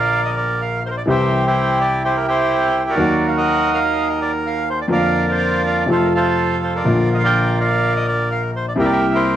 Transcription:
Already playing: A#1 A#2 D3 F3 A#3 F4 A#4 D5 F5
0.25 D#5
0.37 D5
0.62 F5
0.86 A#4 C5
0.91 C5
0.98 D5
1.06 C2 C3 E3 G3 C4 G4 C5
1.10 G4 E5
1.46 E4 G4 C5
1.81 D5
2.04 E4 G4 C5
2.17 A#4
2.28 E4 G4 C5
2.79 C5
2.89 F#4 A#4 D5
2.95 D#2 D#3 F#3 A#3
2.99 F#4
3.28 F5
3.37 A#4 D#5 F#5
3.73 A#4 F5
4.09 D#5
4.22 D5
4.47 F5
4.70 C5
4.82 D5
4.88 F2 D3 F3 A#3 F4
4.92 A#4 D5 F5
5.29 F4 C5
5.67 D5
5.86 F2 C3 F3 A3
5.90 F4 A4 C5
6.05 A#4
6.15 F4 A4 C5
6.64 C5
6.75 F4 A#4 D5
6.84 A#1 A#2 D3 F3 A#3 F4
7.15 D#5
7.20 F5
7.24 A#4 D5 G5
7.61 A#4 D5 F5
7.96 D#5
8.08 D5
8.32 F5
8.56 C5
8.68 D5
8.76 C2 C3 G3 A#3 G4
8.80 E4 A#4 E5
8.85 D5
8.92 E5
9.14 E4 G4 C5

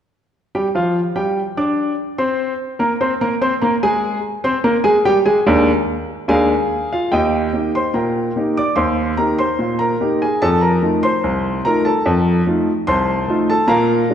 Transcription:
0.55 G3 G4 G5
0.75 F3 F4 F5
1.16 G3 G4 G5
1.57 D4 D5 D6
2.18 C4 C5 C6
2.79 A#3 A#4 A#5
3.01 C4 C5 C6
3.21 A#3 A#4 A#5
3.41 C4 C5 C6
3.62 A#3 A#4 A#5
3.83 G#3 G#4 G#5
4.44 C4 C5 C6
4.64 A#3 A#4 A#5
4.84 G#3 G#4 G#5
5.05 G3 G4 G5
5.25 G#3 G#4 G#5
5.46 D#2 G#3 D4 A#4
6.28 D#2 G#3 D4 G#4 A#4 F5 G#5
6.92 F4 F5
7.12 D#2 G4 D#5 G5
7.53 A#3 D#4 G4
7.75 C5 C6
7.94 A#2 A#4 G5 A#5
8.36 A#3 D#4 G4
8.57 D5 D6
8.76 D#2 C5 C6
9.17 A#3 D#4 G4 A#4 A#5
9.39 C5 C6
9.59 A#2
9.79 A#4 A#5
10.01 A#3 D#4 G4
10.22 G#4 G#5
10.42 F2 A4 A5
10.61 A#4 A#5
10.83 A3 D#4 F4
11.03 C5 C6
11.24 C2
11.65 A3 D#4 F4 A#4 A#5
11.85 A4 A5
12.06 F2
12.47 A3 D#4 F4
12.87 C2 C5 A5 C6
13.28 A3 D#4 F4
13.50 A4 A5
13.68 A#2 A#4 F5 A#5
14.10 G#3 D4 F4

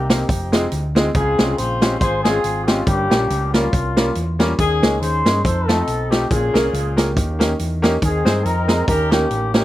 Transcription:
Already playing: C2 A#3 D#4 G4
0.10 A#3 C4 D#4 G4 A#4, snare, closed hi-hat
0.29 F1, kick, closed hi-hat
0.52 G#3 C4 D#4 F4 G#4, snare, closed hi-hat
0.72 D2, closed hi-hat
0.95 G#3 C4 D#4 F4 G#4, snare, closed hi-hat
1.14 C#2 C#3 C4 F4 G#4, kick, closed hi-hat
1.38 C2 G#3 C4 C#4 F4 G#4, snare, closed hi-hat
1.58 A#1 F4 G#4 C5, closed hi-hat
1.82 G#3 C4 C#4 F4 G4, snare, closed hi-hat
2.00 G#1 F4 G#4 C5, kick, closed hi-hat
2.23 G#3 C4 C#4 F4 G#4, snare, closed hi-hat
2.44 G#1, closed hi-hat
2.65 G#3 C4 C#4 F4 G4, snare, closed hi-hat
2.85 G1 G2 A#3 C#4 G4, kick, closed hi-hat
3.10 A#1 G3 A#3 C#4 F4 G4, snare, closed hi-hat
3.30 C#2, closed hi-hat
3.53 G3 A#3 C#4 F4 A#4, snare, closed hi-hat
3.73 C2, kick, closed hi-hat
3.97 G3 A#3 C#4 F4 A#4, snare, closed hi-hat
4.15 E2, closed hi-hat
4.39 G3 A#3 C#4 F4 A#4, snare, closed hi-hat
4.59 D#2 D#3 C#4 G#4, kick, closed hi-hat
4.82 C#2 G#3 A#3 C#4 D#4 G#4, snare, closed hi-hat
5.01 D#2 G#4 C5, closed hi-hat
5.25 G2 G#3 A#3 C#4 D#4 G#4, snare, closed hi-hat
5.44 F2 D#4 A4 C5, kick, closed hi-hat
5.67 A3 C4 D#4 F4 A4, snare, closed hi-hat
5.87 B1, closed hi-hat
6.10 A3 C4 D#4 F4 G4, snare, closed hi-hat
6.31 A#1 A#2 C#4 F4 G#4, kick, closed hi-hat
6.54 C2 A#3 C#4 F4 G#4 A#4, snare, closed hi-hat
6.73 C#2, closed hi-hat
6.97 A#3 C#4 F4 G4 G#4 A#4, snare, closed hi-hat
7.17 D#2 D#3, kick, closed hi-hat
7.39 A#3 C#4 D#4 G4 A#4, snare, closed hi-hat
7.59 E2, closed hi-hat
7.82 A#3 C#4 D#4 G4 A#4, snare, closed hi-hat
8.02 D#2 D#3 C4 D#4 G#4, kick, closed hi-hat
8.25 G2 G#3 C4 D#4 G#4 C5, snare, closed hi-hat
8.44 F2 D#4 A#4, closed hi-hat
8.68 G#3 C4 D#4 G#4 D#5, snare, closed hi-hat
8.88 D#2 D#3 C#4 G4 A#4, kick, closed hi-hat
9.11 A#3 C#4 D#4 G4 A#4, snare, closed hi-hat
9.30 A1, closed hi-hat
9.54 A#3 C#4 D#4 G4 A#4, snare, closed hi-hat

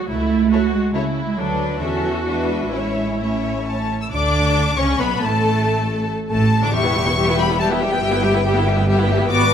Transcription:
0.09 C#2 A3 E4
0.52 E4 F#4 A4 C#5
0.74 G#3
0.95 C#3 E4 A4 C#5
1.27 G#3
1.37 D2 F#3 D4 A4 B4
1.80 E2 D3 C#4 F#4 A4 E5
2.03 E3
2.25 G#3 D4 B4 E5
2.71 A1 G#3 C#4 E4 C#5 E5
3.20 A3 C#4 C#5 E5
3.66 A5
4.00 E6
4.11 D2 D3 D4 D5 D6
4.77 C#2 C#3 C#4 C#5 C#6
4.99 B1 B2 B3 B4 B5
5.22 A1 A2 A3 A4 A5
6.30 A1 A2 A3 A4 A5
6.63 D3 D4 D5 D6
6.73 E1 E2 G3 G4 E5 C#6
6.84 B3 E4 B4 G5
6.95 G3 G4 E5
7.06 B3 E4 B4 G5
7.17 G3 G4 E5
7.28 B3 E4 B4 G5
7.38 G3 G4 E5 B5
7.49 B3 E4 B4 G5
7.59 G3 G4 E5 A5
7.70 B3 E4 B4 G5
7.81 G3 G4 E5 G5
7.91 B3 E4 B4 G5
8.02 G1 G2 G3 G4 E5
8.12 B3 E4 B4 G5
8.24 G3 G4 E5
8.34 B3 E4 B4 G5
8.45 G3 G4 E5
8.56 B3 E4 B4 G5
8.66 G3 G4 E5
8.77 B3 E4 B4 G5
8.87 G3 G4 E5
8.98 B3 E4 B4 G5
9.09 G3 G4 E5
9.19 B3 E4 B4 G5
9.29 G#1 G#2 B3 F#4 B4 D5 D6

